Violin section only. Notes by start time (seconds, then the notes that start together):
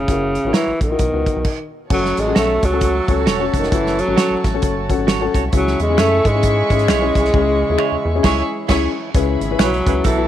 1.90 F#4 C#5 A5
5.53 G#4 E5 C#6
8.24 G#4 E5 C#6
8.69 G#4 E5 C#6
9.15 G#4 E5 B5
10.05 F#4 E5 A5